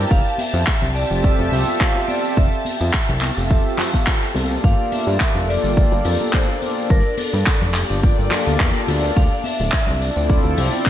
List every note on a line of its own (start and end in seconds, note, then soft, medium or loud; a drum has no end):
0.00 4.65 G4 medium
0.00 0.10 D5 loud
0.00 4.65 A5 medium
0.10 0.23 F1 medium
0.10 0.40 F5 loud
0.10 kick loud
0.10 tambourine medium
0.10 cabasa soft
0.25 tambourine soft
0.25 cabasa soft
0.38 0.91 E5 loud
0.38 open hi-hat loud
0.38 high conga medium
0.38 cabasa medium
0.54 0.65 F2 loud
0.54 tambourine medium
0.54 high bongo soft
0.54 cabasa soft
0.67 kick loud
0.67 clap loud
0.67 tambourine medium
0.67 cabasa soft
0.82 1.05 C2 medium
0.82 tambourine soft
0.82 low conga medium
0.82 cabasa soft
0.95 2.05 C4 medium
0.95 2.06 F4 medium
0.95 2.06 G4 medium
0.95 2.06 A4 medium
0.95 1.48 D5 medium
0.95 2.06 E5 loud
0.95 open hi-hat medium
0.95 cabasa medium
1.11 1.33 F1 medium
1.11 tambourine medium
1.11 cabasa soft
1.23 kick loud
1.23 tambourine medium
1.23 cabasa medium
1.39 1.50 F1 medium
1.39 tambourine soft
1.39 high bongo medium
1.39 cabasa soft
1.51 1.64 C2 loud
1.51 1.81 E5 loud
1.51 open hi-hat loud
1.51 low conga medium
1.51 cabasa medium
1.68 tambourine medium
1.68 high conga medium
1.68 cabasa soft
1.79 2.09 F5 loud
1.79 kick loud
1.79 clap loud
1.79 tambourine medium
1.79 cabasa medium
1.95 tambourine soft
1.95 high bongo medium
1.95 cabasa soft
2.08 2.34 C4 medium
2.08 2.34 F4 medium
2.08 2.34 G4 medium
2.08 2.34 A4 medium
2.08 2.38 D5 medium
2.08 2.34 E5 loud
2.08 open hi-hat medium
2.08 high conga medium
2.08 cabasa loud
2.24 tambourine medium
2.24 high bongo soft
2.24 cabasa soft
2.36 2.49 F1 medium
2.36 4.02 E5 medium
2.36 kick loud
2.36 tambourine medium
2.36 cabasa medium
2.52 tambourine soft
2.52 cabasa soft
2.65 open hi-hat loud
2.65 high conga medium
2.65 cabasa medium
2.80 2.91 F2 loud
2.80 tambourine medium
2.80 high bongo soft
2.80 cabasa soft
2.93 kick loud
2.93 clap loud
2.93 tambourine medium
2.93 cabasa medium
3.09 3.31 C2 medium
3.09 tambourine soft
3.09 low conga medium
3.09 cabasa soft
3.21 3.62 C4 medium
3.21 3.62 F4 medium
3.21 3.62 G4 medium
3.21 3.62 A4 medium
3.21 3.62 E5 medium
3.21 clap medium
3.21 open hi-hat medium
3.21 high conga medium
3.21 cabasa medium
3.37 3.60 F1 medium
3.37 tambourine medium
3.37 cabasa soft
3.50 kick loud
3.50 tambourine medium
3.50 cabasa medium
3.65 3.91 C4 medium
3.65 3.91 F4 medium
3.65 3.91 G4 medium
3.65 3.91 A4 medium
3.65 3.91 E5 loud
3.65 tambourine soft
3.65 cabasa soft
3.78 clap medium
3.78 open hi-hat loud
3.78 high bongo medium
3.78 low conga medium
3.78 cabasa loud
3.93 4.09 C4 medium
3.93 4.09 F4 medium
3.93 4.09 G4 medium
3.93 4.09 A4 medium
3.93 4.09 F5 medium
3.93 kick medium
3.93 tambourine medium
3.93 high conga medium
3.93 cabasa soft
4.07 kick loud
4.07 clap loud
4.07 tambourine medium
4.22 tambourine soft
4.22 cabasa soft
4.34 4.58 C2 medium
4.34 5.45 A#3 medium
4.34 5.45 F4 medium
4.34 5.46 G4 medium
4.34 5.46 A4 medium
4.34 5.46 D5 medium
4.34 open hi-hat medium
4.34 high bongo medium
4.34 high conga medium
4.34 cabasa medium
4.50 tambourine medium
4.50 high bongo soft
4.50 cabasa soft
4.63 4.76 G1 loud
4.63 10.90 D4 medium
4.63 10.90 D5 medium
4.63 4.93 F5 loud
4.63 kick loud
4.63 tambourine medium
4.63 cabasa medium
4.79 tambourine soft
4.79 cabasa soft
4.91 5.50 E5 loud
4.91 open hi-hat loud
4.91 high conga medium
4.91 cabasa medium
5.07 5.18 G2 loud
5.07 tambourine medium
5.07 high bongo soft
5.07 cabasa soft
5.20 kick loud
5.20 clap loud
5.20 tambourine medium
5.35 5.58 F1 medium
5.35 tambourine soft
5.35 low conga medium
5.35 cabasa soft
5.48 6.58 A#3 loud
5.48 6.58 F4 medium
5.48 6.59 G4 medium
5.48 6.59 A4 medium
5.48 6.36 D5 loud
5.48 6.59 D5 loud
5.48 open hi-hat medium
5.48 cabasa medium
5.63 5.86 G1 medium
5.63 tambourine medium
5.63 cabasa soft
5.77 kick loud
5.77 tambourine medium
5.77 cabasa medium
5.92 6.03 G1 medium
5.92 tambourine soft
5.92 high bongo medium
5.92 cabasa soft
6.05 6.17 F2 loud
6.05 open hi-hat loud
6.05 low conga medium
6.05 cabasa medium
6.20 tambourine medium
6.20 high conga medium
6.20 cabasa soft
6.33 6.92 C5 medium
6.33 kick loud
6.33 clap loud
6.33 tambourine soft
6.33 cabasa soft
6.48 tambourine soft
6.48 high bongo medium
6.48 cabasa soft
6.62 6.87 A#3 medium
6.62 6.87 F4 medium
6.62 6.87 G4 medium
6.62 6.87 A4 medium
6.62 6.87 D5 loud
6.62 open hi-hat medium
6.62 high conga medium
6.62 cabasa medium
6.77 tambourine medium
6.77 high bongo soft
6.77 cabasa soft
6.89 7.02 G1 loud
6.89 7.19 A#4 loud
6.89 kick loud
6.89 tambourine medium
6.89 cabasa soft
7.05 tambourine soft
7.05 cabasa soft
7.18 7.77 A4 medium
7.18 open hi-hat loud
7.18 high conga medium
7.18 cabasa medium
7.33 7.44 G2 loud
7.33 tambourine medium
7.33 high bongo medium
7.33 cabasa soft
7.46 kick loud
7.46 clap loud
7.46 tambourine medium
7.61 7.84 F1 medium
7.61 tambourine soft
7.61 low conga medium
7.61 cabasa soft
7.74 8.15 A#3 medium
7.74 8.15 F4 medium
7.74 8.15 G4 medium
7.74 8.84 G4 medium
7.74 8.15 A4 medium
7.74 8.15 D5 medium
7.74 clap medium
7.74 open hi-hat medium
7.74 cabasa medium
7.90 8.13 G1 medium
7.90 tambourine medium
7.90 cabasa soft
8.02 kick loud
8.02 tambourine soft
8.02 cabasa medium
8.18 8.29 G1 loud
8.18 9.15 A#3 medium
8.18 9.15 F4 medium
8.18 9.15 G4 medium
8.18 9.15 A4 medium
8.18 9.16 D5 loud
8.18 tambourine soft
8.18 cabasa soft
8.31 clap medium
8.31 open hi-hat loud
8.31 high bongo medium
8.31 low conga medium
8.31 cabasa medium
8.46 8.57 D2 medium
8.46 tambourine medium
8.46 high conga medium
8.46 cabasa soft
8.60 8.72 E2 medium
8.60 kick loud
8.60 clap loud
8.60 tambourine medium
8.75 tambourine soft
8.75 cabasa soft
8.87 9.11 D2 loud
8.87 open hi-hat loud
8.87 high bongo medium
8.87 high conga medium
8.87 cabasa medium
9.03 tambourine medium
9.03 high bongo soft
9.03 cabasa soft
9.16 9.29 D2 loud
9.16 9.46 F5 loud
9.16 kick loud
9.16 tambourine medium
9.16 cabasa soft
9.31 tambourine soft
9.31 cabasa soft
9.44 10.03 E5 loud
9.44 open hi-hat loud
9.44 high conga medium
9.44 cabasa medium
9.60 9.71 D1 loud
9.60 tambourine medium
9.60 high bongo soft
9.60 cabasa soft
9.72 kick loud
9.72 clap loud
9.72 tambourine medium
9.87 10.11 C2 medium
9.87 tambourine soft
9.87 low conga medium
9.87 cabasa soft
10.00 10.90 C4 medium
10.00 10.90 E4 medium
10.00 10.90 F4 medium
10.00 10.90 A4 medium
10.00 10.54 D5 medium
10.00 10.90 D5 loud
10.00 open hi-hat loud
10.00 cabasa medium
10.16 10.39 D2 medium
10.16 tambourine medium
10.16 cabasa soft
10.29 kick loud
10.29 tambourine soft
10.29 cabasa soft
10.44 10.55 D2 medium
10.44 tambourine soft
10.44 high bongo medium
10.44 cabasa soft
10.57 10.70 C2 loud
10.57 open hi-hat loud
10.57 low conga medium
10.57 cabasa medium
10.72 tambourine medium
10.72 high conga medium
10.72 cabasa soft
10.86 10.90 C5 medium
10.86 kick loud
10.86 clap loud
10.86 tambourine soft
10.86 cabasa soft